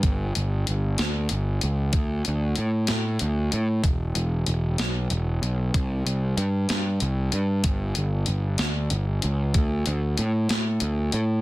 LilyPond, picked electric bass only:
\new Staff \with { instrumentName = "Picked electric bass" } { \clef bass \time 6/8 \key g \major \tempo 4. = 63 g,,8 g,,8 g,,8 d,8 g,,8 cis,8 | d,8 d,8 a,8 a,8 d,8 a,8 | e,,8 e,,8 e,,8 r8 e,,8 b,,8 | c,8 c,8 g,8 g,8 c,8 g,8 |
g,,8 g,,8 g,,8 d,8 g,,8 cis,8 | d,8 d,8 a,8 a,8 d,8 a,8 | }